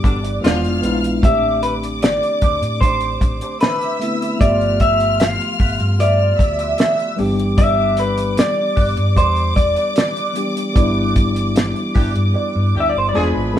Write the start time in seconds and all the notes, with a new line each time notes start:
Already playing: E3 G3 B3 D4 G4 D5 D6
0.03 G1 B2 D3 G3 D4, muted clean electric guitar stroke, kick, closed hi-hat
0.24 G4 B4 D5, closed hi-hat
0.41 E1 D3 E3 F3 G#3 B3 D4 F4 G#4 F5 F6, closed hi-hat
0.45 F4 D5, snare
0.63 F1, closed hi-hat
0.82 A#1 E3 G#3 B3 D4 E4, closed hi-hat
1.03 muted clean electric guitar stroke, closed hi-hat
1.21 A1 D3 A3 C4 D4 G4 C5 D5 E5 D6, kick, closed hi-hat
1.25 G4
1.63 B4, closed hi-hat
1.83 muted clean electric guitar stroke, closed hi-hat
2.02 D5, muted clean electric guitar stroke, snare, closed hi-hat
2.22 muted clean electric guitar stroke, closed hi-hat
2.42 D2 D4 G4 C5, kick, closed hi-hat
2.61 A2, closed hi-hat
2.81 A1 D4 G4 C5, kick, closed hi-hat
3.01 closed hi-hat
3.21 A1, muted clean electric guitar stroke, kick, closed hi-hat
3.41 D4 G4 C5, closed hi-hat
3.61 D4 G4 B4 C5 E5 E6, snare, closed hi-hat
3.81 closed hi-hat
3.99 D3 A3 B3 C4 E4, closed hi-hat
4.21 muted clean electric guitar stroke, closed hi-hat
4.38 G1 F3 A3 B3 F4 B4 D5 E5 F6, kick, closed hi-hat
4.42 G4
4.61 closed hi-hat
4.80 E5, kick, closed hi-hat
5.00 muted clean electric guitar stroke, closed hi-hat
5.20 F5, muted clean electric guitar stroke, snare, closed hi-hat
5.39 muted clean electric guitar stroke, closed hi-hat
5.59 G1 F4 B4 E5, kick, open hi-hat
5.79 G2, muted clean electric guitar stroke, closed hi-hat
5.99 F4 B4 D5 E5, closed hi-hat
6.38 D2 E5 E6, muted clean electric guitar stroke, kick, closed hi-hat
6.59 F4 B4 E5, closed hi-hat
6.78 F4 B4 E5, snare, closed hi-hat
6.99 closed hi-hat
7.16 G1 E3 G3 B3 D4 G4 D5 D6, muted clean electric guitar stroke, open hi-hat
7.39 muted clean electric guitar stroke, closed hi-hat
7.58 G4 B4 D5 E5, kick, closed hi-hat
7.97 B4, closed hi-hat
8.17 muted clean electric guitar stroke, closed hi-hat
8.37 D5, muted clean electric guitar stroke, snare, closed hi-hat
8.58 muted clean electric guitar stroke
8.76 G1 G4 B4 D5, kick, open hi-hat
8.97 G2, muted clean electric guitar stroke, closed hi-hat
9.16 E2 G4 B4 C5 D5, kick, closed hi-hat
9.36 closed hi-hat
9.56 E1 D5, muted clean electric guitar stroke, kick, closed hi-hat
9.76 G4 B4 D5, closed hi-hat
9.96 G4 B4 D5, snare, closed hi-hat
10.17 closed hi-hat
10.33 E3 G3 B3 D4 G4, muted clean electric guitar stroke, closed hi-hat
10.55 muted clean electric guitar stroke, closed hi-hat
10.73 G1 E3 G3 B3 D4 E4 G4 B4, kick, closed hi-hat
10.77 D5
11.16 kick, closed hi-hat
11.35 muted clean electric guitar stroke, closed hi-hat
11.55 muted clean electric guitar stroke, snare, closed hi-hat
11.74 muted clean electric guitar stroke, closed hi-hat
11.94 G1 E3 G3 D4 G4 B4 D5, kick, open hi-hat
12.14 G2, muted clean electric guitar stroke, closed hi-hat
12.34 G4 B4 D5
12.56 G2
12.74 D2 E3 G3 D4 G4, muted clean electric guitar stroke
12.80 E5
12.89 D5
12.94 G1 C5, muted clean electric guitar stroke
13.09 E3 D5
13.13 E1 F3 G#3 B3 D4 F4 G#4 B4 D5 B5
13.35 G#1
13.53 B1 E3 G#3 B3 D4